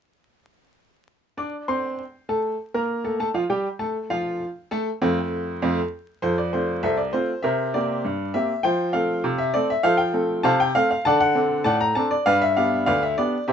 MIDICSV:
0, 0, Header, 1, 2, 480
1, 0, Start_track
1, 0, Key_signature, -1, "major"
1, 0, Tempo, 604839
1, 1094, Time_signature, 2, 2, 24, 8
1, 10734, End_track
2, 0, Start_track
2, 0, Title_t, "Upright piano"
2, 0, Program_c, 0, 0
2, 1090, Note_on_c, 0, 62, 59
2, 1092, Note_on_c, 0, 86, 62
2, 1093, Note_on_c, 0, 74, 56
2, 1223, Note_off_c, 0, 62, 0
2, 1225, Note_off_c, 0, 74, 0
2, 1225, Note_off_c, 0, 86, 0
2, 1260, Control_c, 0, 64, 127
2, 1335, Note_on_c, 0, 84, 63
2, 1336, Note_on_c, 0, 72, 60
2, 1338, Note_on_c, 0, 60, 60
2, 1585, Control_c, 0, 64, 0
2, 1599, Note_off_c, 0, 84, 0
2, 1600, Note_off_c, 0, 72, 0
2, 1601, Note_off_c, 0, 60, 0
2, 1816, Note_on_c, 0, 57, 59
2, 1818, Note_on_c, 0, 69, 68
2, 1818, Note_on_c, 0, 81, 65
2, 2014, Note_off_c, 0, 57, 0
2, 2015, Note_off_c, 0, 69, 0
2, 2015, Note_off_c, 0, 81, 0
2, 2177, Note_on_c, 0, 70, 62
2, 2178, Note_on_c, 0, 82, 64
2, 2179, Note_on_c, 0, 58, 63
2, 2220, Control_c, 0, 64, 127
2, 2308, Note_off_c, 0, 70, 0
2, 2309, Note_off_c, 0, 82, 0
2, 2310, Note_off_c, 0, 58, 0
2, 2414, Note_on_c, 0, 57, 55
2, 2416, Note_on_c, 0, 81, 53
2, 2418, Note_on_c, 0, 69, 62
2, 2480, Note_off_c, 0, 57, 0
2, 2482, Note_off_c, 0, 81, 0
2, 2483, Note_off_c, 0, 69, 0
2, 2537, Note_on_c, 0, 69, 70
2, 2539, Note_on_c, 0, 57, 65
2, 2541, Note_on_c, 0, 81, 76
2, 2546, Control_c, 0, 64, 0
2, 2602, Note_off_c, 0, 69, 0
2, 2603, Note_off_c, 0, 57, 0
2, 2605, Note_off_c, 0, 81, 0
2, 2652, Note_on_c, 0, 65, 64
2, 2654, Note_on_c, 0, 53, 71
2, 2655, Note_on_c, 0, 77, 64
2, 2719, Note_off_c, 0, 53, 0
2, 2719, Note_off_c, 0, 65, 0
2, 2720, Note_off_c, 0, 77, 0
2, 2775, Note_on_c, 0, 55, 69
2, 2775, Note_on_c, 0, 67, 77
2, 2776, Note_on_c, 0, 79, 64
2, 2906, Note_off_c, 0, 55, 0
2, 2906, Note_off_c, 0, 67, 0
2, 2907, Note_off_c, 0, 79, 0
2, 3010, Note_on_c, 0, 57, 71
2, 3011, Note_on_c, 0, 69, 71
2, 3011, Note_on_c, 0, 81, 64
2, 3142, Note_off_c, 0, 57, 0
2, 3142, Note_off_c, 0, 69, 0
2, 3143, Note_off_c, 0, 81, 0
2, 3180, Control_c, 0, 64, 127
2, 3255, Note_on_c, 0, 65, 73
2, 3256, Note_on_c, 0, 77, 82
2, 3257, Note_on_c, 0, 53, 72
2, 3499, Control_c, 0, 64, 0
2, 3518, Note_off_c, 0, 65, 0
2, 3518, Note_off_c, 0, 77, 0
2, 3520, Note_off_c, 0, 53, 0
2, 3738, Note_on_c, 0, 69, 86
2, 3740, Note_on_c, 0, 57, 94
2, 3743, Note_on_c, 0, 81, 85
2, 3869, Note_off_c, 0, 69, 0
2, 3870, Note_off_c, 0, 57, 0
2, 3872, Note_off_c, 0, 81, 0
2, 3980, Note_on_c, 0, 60, 88
2, 3981, Note_on_c, 0, 41, 86
2, 3981, Note_on_c, 0, 65, 67
2, 3982, Note_on_c, 0, 57, 80
2, 4111, Note_off_c, 0, 41, 0
2, 4111, Note_off_c, 0, 60, 0
2, 4111, Note_off_c, 0, 65, 0
2, 4112, Note_off_c, 0, 57, 0
2, 4140, Control_c, 0, 64, 127
2, 4463, Note_on_c, 0, 41, 93
2, 4464, Note_on_c, 0, 57, 79
2, 4465, Note_on_c, 0, 60, 76
2, 4465, Note_on_c, 0, 65, 70
2, 4467, Control_c, 0, 64, 0
2, 4594, Note_off_c, 0, 41, 0
2, 4595, Note_off_c, 0, 57, 0
2, 4596, Note_off_c, 0, 60, 0
2, 4596, Note_off_c, 0, 65, 0
2, 4938, Note_on_c, 0, 72, 87
2, 4940, Note_on_c, 0, 41, 77
2, 4945, Note_on_c, 0, 65, 60
2, 4945, Note_on_c, 0, 69, 60
2, 5055, Note_off_c, 0, 65, 0
2, 5055, Note_off_c, 0, 69, 0
2, 5060, Note_off_c, 0, 72, 0
2, 5063, Note_on_c, 0, 74, 68
2, 5095, Control_c, 0, 64, 127
2, 5145, Note_off_c, 0, 41, 0
2, 5181, Note_on_c, 0, 72, 73
2, 5183, Note_off_c, 0, 74, 0
2, 5183, Note_on_c, 0, 57, 46
2, 5189, Note_on_c, 0, 60, 43
2, 5194, Note_on_c, 0, 65, 51
2, 5315, Note_off_c, 0, 57, 0
2, 5319, Note_off_c, 0, 60, 0
2, 5323, Note_off_c, 0, 65, 0
2, 5414, Note_off_c, 0, 72, 0
2, 5419, Note_on_c, 0, 76, 89
2, 5420, Note_on_c, 0, 36, 68
2, 5426, Note_on_c, 0, 72, 66
2, 5428, Note_on_c, 0, 69, 71
2, 5435, Control_c, 0, 64, 0
2, 5534, Note_on_c, 0, 74, 62
2, 5537, Note_off_c, 0, 72, 0
2, 5538, Note_off_c, 0, 69, 0
2, 5541, Note_off_c, 0, 76, 0
2, 5626, Note_off_c, 0, 36, 0
2, 5657, Note_on_c, 0, 72, 85
2, 5659, Note_off_c, 0, 74, 0
2, 5659, Note_on_c, 0, 57, 52
2, 5666, Note_on_c, 0, 60, 54
2, 5668, Note_on_c, 0, 65, 56
2, 5793, Note_off_c, 0, 57, 0
2, 5798, Note_off_c, 0, 60, 0
2, 5799, Note_off_c, 0, 65, 0
2, 5893, Note_off_c, 0, 72, 0
2, 5893, Note_on_c, 0, 76, 82
2, 5902, Note_on_c, 0, 48, 70
2, 5904, Note_on_c, 0, 70, 60
2, 5905, Note_on_c, 0, 72, 59
2, 6058, Control_c, 0, 64, 127
2, 6107, Note_off_c, 0, 48, 0
2, 6128, Note_off_c, 0, 70, 0
2, 6128, Note_off_c, 0, 72, 0
2, 6139, Note_off_c, 0, 76, 0
2, 6144, Note_on_c, 0, 74, 78
2, 6145, Note_on_c, 0, 58, 47
2, 6148, Note_on_c, 0, 60, 51
2, 6155, Note_on_c, 0, 67, 55
2, 6277, Note_off_c, 0, 58, 0
2, 6279, Note_off_c, 0, 60, 0
2, 6284, Note_off_c, 0, 67, 0
2, 6383, Note_on_c, 0, 43, 74
2, 6391, Control_c, 0, 64, 0
2, 6587, Note_off_c, 0, 43, 0
2, 6618, Note_on_c, 0, 76, 86
2, 6621, Note_on_c, 0, 58, 49
2, 6623, Note_off_c, 0, 74, 0
2, 6626, Note_on_c, 0, 60, 46
2, 6630, Note_on_c, 0, 67, 57
2, 6753, Note_off_c, 0, 58, 0
2, 6757, Note_off_c, 0, 60, 0
2, 6759, Note_off_c, 0, 67, 0
2, 6851, Note_on_c, 0, 79, 92
2, 6860, Note_off_c, 0, 76, 0
2, 6860, Note_on_c, 0, 53, 81
2, 6863, Note_on_c, 0, 72, 78
2, 7022, Control_c, 0, 64, 127
2, 7064, Note_off_c, 0, 53, 0
2, 7085, Note_off_c, 0, 72, 0
2, 7087, Note_on_c, 0, 77, 78
2, 7092, Note_on_c, 0, 57, 47
2, 7095, Note_on_c, 0, 60, 46
2, 7096, Note_off_c, 0, 79, 0
2, 7100, Note_on_c, 0, 69, 61
2, 7226, Note_off_c, 0, 57, 0
2, 7228, Note_off_c, 0, 60, 0
2, 7232, Note_off_c, 0, 69, 0
2, 7332, Note_on_c, 0, 48, 84
2, 7352, Control_c, 0, 64, 0
2, 7448, Note_on_c, 0, 76, 88
2, 7453, Note_off_c, 0, 77, 0
2, 7539, Note_off_c, 0, 48, 0
2, 7569, Note_on_c, 0, 74, 94
2, 7573, Note_off_c, 0, 76, 0
2, 7573, Note_on_c, 0, 57, 52
2, 7577, Note_on_c, 0, 60, 63
2, 7581, Note_on_c, 0, 69, 62
2, 7694, Note_off_c, 0, 74, 0
2, 7699, Note_on_c, 0, 76, 88
2, 7707, Note_off_c, 0, 57, 0
2, 7709, Note_off_c, 0, 60, 0
2, 7712, Note_off_c, 0, 69, 0
2, 7804, Note_on_c, 0, 77, 103
2, 7807, Note_on_c, 0, 53, 85
2, 7811, Note_on_c, 0, 72, 72
2, 7813, Note_on_c, 0, 69, 80
2, 7819, Note_off_c, 0, 76, 0
2, 7915, Note_on_c, 0, 79, 86
2, 7926, Note_off_c, 0, 72, 0
2, 7927, Note_off_c, 0, 69, 0
2, 7931, Note_off_c, 0, 77, 0
2, 7971, Control_c, 0, 64, 127
2, 8016, Note_off_c, 0, 53, 0
2, 8041, Note_on_c, 0, 57, 58
2, 8046, Note_on_c, 0, 60, 47
2, 8046, Note_on_c, 0, 69, 58
2, 8177, Note_off_c, 0, 57, 0
2, 8181, Note_off_c, 0, 60, 0
2, 8181, Note_off_c, 0, 69, 0
2, 8280, Note_on_c, 0, 81, 107
2, 8285, Note_off_c, 0, 79, 0
2, 8285, Note_on_c, 0, 48, 89
2, 8287, Note_on_c, 0, 72, 79
2, 8291, Note_on_c, 0, 77, 90
2, 8309, Control_c, 0, 64, 0
2, 8403, Note_off_c, 0, 72, 0
2, 8405, Note_off_c, 0, 77, 0
2, 8408, Note_off_c, 0, 81, 0
2, 8412, Note_on_c, 0, 79, 101
2, 8493, Note_off_c, 0, 48, 0
2, 8531, Note_on_c, 0, 77, 103
2, 8534, Note_off_c, 0, 79, 0
2, 8534, Note_on_c, 0, 57, 60
2, 8536, Note_on_c, 0, 60, 59
2, 8540, Note_on_c, 0, 69, 64
2, 8644, Note_off_c, 0, 77, 0
2, 8656, Note_on_c, 0, 77, 88
2, 8666, Note_off_c, 0, 57, 0
2, 8667, Note_off_c, 0, 60, 0
2, 8670, Note_off_c, 0, 69, 0
2, 8771, Note_on_c, 0, 81, 116
2, 8775, Note_off_c, 0, 77, 0
2, 8778, Note_on_c, 0, 50, 91
2, 8784, Note_on_c, 0, 74, 89
2, 8784, Note_on_c, 0, 78, 88
2, 8880, Note_off_c, 0, 78, 0
2, 8891, Note_off_c, 0, 74, 0
2, 8892, Note_off_c, 0, 81, 0
2, 8892, Note_on_c, 0, 78, 108
2, 8935, Control_c, 0, 64, 127
2, 8980, Note_off_c, 0, 50, 0
2, 9010, Note_on_c, 0, 60, 58
2, 9010, Note_on_c, 0, 62, 58
2, 9013, Note_on_c, 0, 69, 56
2, 9142, Note_off_c, 0, 60, 0
2, 9143, Note_off_c, 0, 62, 0
2, 9145, Note_off_c, 0, 69, 0
2, 9239, Note_off_c, 0, 78, 0
2, 9240, Note_on_c, 0, 81, 108
2, 9243, Note_on_c, 0, 45, 77
2, 9247, Note_on_c, 0, 74, 83
2, 9251, Note_on_c, 0, 78, 84
2, 9259, Control_c, 0, 64, 0
2, 9361, Note_off_c, 0, 74, 0
2, 9363, Note_off_c, 0, 78, 0
2, 9366, Note_off_c, 0, 81, 0
2, 9369, Note_on_c, 0, 82, 105
2, 9451, Note_off_c, 0, 45, 0
2, 9485, Note_on_c, 0, 81, 100
2, 9491, Note_off_c, 0, 82, 0
2, 9493, Note_on_c, 0, 60, 57
2, 9496, Note_on_c, 0, 62, 59
2, 9497, Note_on_c, 0, 69, 64
2, 9609, Note_off_c, 0, 81, 0
2, 9609, Note_on_c, 0, 74, 86
2, 9625, Note_off_c, 0, 60, 0
2, 9627, Note_off_c, 0, 62, 0
2, 9627, Note_off_c, 0, 69, 0
2, 9727, Note_off_c, 0, 74, 0
2, 9728, Note_on_c, 0, 77, 113
2, 9733, Note_on_c, 0, 43, 87
2, 9737, Note_on_c, 0, 71, 84
2, 9739, Note_on_c, 0, 74, 79
2, 9846, Note_off_c, 0, 71, 0
2, 9847, Note_off_c, 0, 74, 0
2, 9850, Note_off_c, 0, 77, 0
2, 9853, Note_on_c, 0, 76, 99
2, 9907, Control_c, 0, 64, 127
2, 9936, Note_off_c, 0, 43, 0
2, 9972, Note_off_c, 0, 76, 0
2, 9972, Note_on_c, 0, 77, 87
2, 9977, Note_on_c, 0, 59, 56
2, 9978, Note_on_c, 0, 62, 49
2, 9986, Note_on_c, 0, 67, 55
2, 10107, Note_off_c, 0, 59, 0
2, 10108, Note_off_c, 0, 62, 0
2, 10114, Note_off_c, 0, 67, 0
2, 10197, Note_off_c, 0, 77, 0
2, 10209, Note_on_c, 0, 77, 98
2, 10217, Note_on_c, 0, 38, 86
2, 10218, Control_c, 0, 64, 0
2, 10219, Note_on_c, 0, 71, 68
2, 10220, Note_on_c, 0, 74, 69
2, 10327, Note_off_c, 0, 71, 0
2, 10328, Note_off_c, 0, 74, 0
2, 10331, Note_off_c, 0, 77, 0
2, 10340, Note_on_c, 0, 76, 76
2, 10419, Note_off_c, 0, 38, 0
2, 10456, Note_off_c, 0, 76, 0
2, 10458, Note_on_c, 0, 74, 89
2, 10462, Note_on_c, 0, 59, 52
2, 10463, Note_on_c, 0, 62, 59
2, 10468, Note_on_c, 0, 67, 53
2, 10592, Note_off_c, 0, 59, 0
2, 10593, Note_off_c, 0, 62, 0
2, 10596, Note_off_c, 0, 67, 0
2, 10695, Note_on_c, 0, 76, 76
2, 10697, Note_off_c, 0, 74, 0
2, 10698, Note_on_c, 0, 48, 82
2, 10704, Note_on_c, 0, 67, 66
2, 10704, Note_on_c, 0, 72, 67
2, 10734, Note_off_c, 0, 48, 0
2, 10734, Note_off_c, 0, 67, 0
2, 10734, Note_off_c, 0, 72, 0
2, 10734, Note_off_c, 0, 76, 0
2, 10734, End_track
0, 0, End_of_file